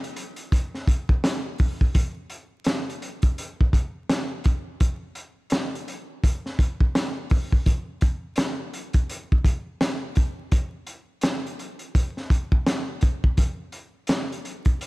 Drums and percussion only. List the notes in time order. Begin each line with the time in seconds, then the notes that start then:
0.04 closed hi-hat
0.16 closed hi-hat
0.36 closed hi-hat
0.52 kick, closed hi-hat
0.75 snare
0.87 kick, closed hi-hat
1.09 kick
1.24 snare, closed hi-hat
1.58 kick, open hi-hat
1.81 kick
1.95 kick, closed hi-hat
2.30 closed hi-hat
2.64 snare, closed hi-hat
2.90 closed hi-hat
3.02 closed hi-hat
3.22 kick, closed hi-hat
3.38 closed hi-hat
3.61 kick
3.73 kick, closed hi-hat
4.09 snare, closed hi-hat
4.44 kick, closed hi-hat
4.80 kick, closed hi-hat
5.15 closed hi-hat
5.50 snare, closed hi-hat
5.75 closed hi-hat
5.88 closed hi-hat
6.24 kick, closed hi-hat
6.46 snare
6.59 kick, closed hi-hat
6.81 kick
6.95 snare, closed hi-hat
7.30 kick, open hi-hat
7.52 kick
7.66 kick, closed hi-hat
8.01 kick, closed hi-hat
8.36 snare, closed hi-hat
8.74 closed hi-hat
8.93 kick, closed hi-hat
9.10 closed hi-hat
9.32 kick
9.44 kick, closed hi-hat
9.81 snare, closed hi-hat
10.15 kick, closed hi-hat
10.52 kick, closed hi-hat
10.87 closed hi-hat
11.21 snare, closed hi-hat
11.47 closed hi-hat
11.59 closed hi-hat
11.79 closed hi-hat
11.95 kick, closed hi-hat
12.17 snare
12.30 kick, closed hi-hat
12.52 kick
12.67 snare, closed hi-hat
13.01 kick, closed hi-hat
13.24 kick
13.37 kick, closed hi-hat
13.72 closed hi-hat
14.07 snare, closed hi-hat
14.32 closed hi-hat
14.45 closed hi-hat
14.65 kick, closed hi-hat
14.81 closed hi-hat